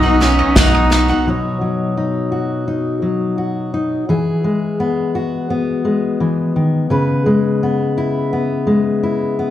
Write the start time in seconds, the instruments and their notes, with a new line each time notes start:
Already playing: sub bass B1, cello D#4, mandolin D#5 D#6, glockenspiel D#6
0.03 steel-string acoustic guitar B3 D#4 F#4, mandolin F#5
0.20 steel-string acoustic guitar F#3 B3 D#4 F#4, cello C#4, mandolin D#6, snare
0.39 mandolin D#5
0.56 sub bass B1, steel-string acoustic guitar B2 F#3 B3 D#4 F#4, cello D#4, mandolin F#5, kick, snare, tambourine
0.75 mandolin D#6
0.90 steel-string acoustic guitar F#3 B3 D#4 F#4, snare
1.08 steel-string acoustic guitar B3 D#4 F#4, mandolin F#5
1.26 steel-string acoustic guitar B2 F#3 D#4 F#4 C#5
1.61 steel-string acoustic guitar F#3
1.97 steel-string acoustic guitar D#4
2.32 steel-string acoustic guitar F#4
2.68 steel-string acoustic guitar D#4
3.02 steel-string acoustic guitar F#3
3.38 steel-string acoustic guitar F#4
3.74 steel-string acoustic guitar D#4
4.09 steel-string acoustic guitar E3 G#4
4.44 steel-string acoustic guitar G#3
4.80 steel-string acoustic guitar B3
5.15 steel-string acoustic guitar F#4
5.50 steel-string acoustic guitar B3
5.85 steel-string acoustic guitar G#3
6.20 steel-string acoustic guitar E3
6.56 steel-string acoustic guitar D#3
6.90 steel-string acoustic guitar C#3 B4
7.26 steel-string acoustic guitar G#3
7.63 steel-string acoustic guitar B3
7.98 steel-string acoustic guitar E4
8.33 steel-string acoustic guitar B3
8.67 steel-string acoustic guitar G#3
9.03 steel-string acoustic guitar E4
9.39 steel-string acoustic guitar B3